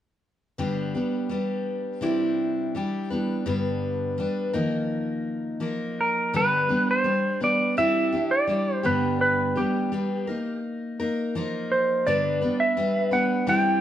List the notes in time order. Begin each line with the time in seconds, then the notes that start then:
0.58 G2 D3 G3 B3 D4 G4
0.94 G3 B3 D4 G4
1.29 G3 B3 D4 G4
2.01 C3 G3 D4 E4 G4
2.75 G3 D4 E4 G4
3.10 G3 B3 D4 B4
3.46 G2 D3 G3 B3 D4 B4
4.18 G3 B3 D4 B4
4.53 D#3 F3 A#3 D#4 A#4
5.60 F3 A#3 D#4 A#4
6.01 A#4
6.33 G2 D3 G3 B3 D4 B4
6.69 G3 B3 D4 B4
6.91 C5
7.04 G3 D4
7.40 G3 B3 D4 B4 D5
7.77 C3 G3 D4 E4 G4 E5
8.12 D4 E4 G4
8.31 D5
8.47 G3 D4 E4 G4
8.75 C5
8.83 G2 D3 G3 B3 D4 G4 B4
9.21 B4
9.56 G3 B3 D4 G4
9.92 G3 B3 D4 G4
10.27 A#3 D#4 A#4
11.00 A#3 D#4 A#4
11.35 F3 A#3 D#4 A#4
11.72 C5
12.06 G2 D3 G3 B3 D4 B4 D5
12.41 G3 B3 D4 B4
12.60 E5
12.77 G3 B3 D4 B4
13.11 G3 B3 D4 B4 F#5
13.47 C3 G3 D4 E4 G4 G5